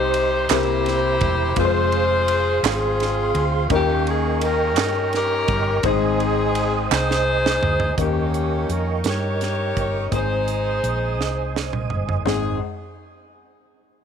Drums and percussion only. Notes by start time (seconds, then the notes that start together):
0.14 ride
0.49 snare, clap, ride
0.86 snare, ride
1.21 kick, ride
1.56 kick, ride
1.92 ride
2.28 ride
2.64 snare, clap, ride
3.00 snare, ride
3.35 ride
3.70 kick, ride
4.07 ride
4.41 ride
4.76 snare, clap, ride
5.13 snare, ride
5.48 kick, ride
5.83 kick, ride
6.20 ride
6.55 ride
6.92 snare, clap
7.11 snare
7.46 snare
7.63 floor tom
7.80 floor tom
7.98 kick, closed hi-hat
8.34 closed hi-hat
8.70 closed hi-hat
9.04 snare, closed hi-hat
9.41 snare, closed hi-hat
9.77 kick, closed hi-hat
10.12 kick, closed hi-hat
10.48 closed hi-hat
10.84 closed hi-hat
11.21 snare
11.56 snare
11.73 mid tom
11.90 floor tom
12.09 floor tom
12.26 snare, floor tom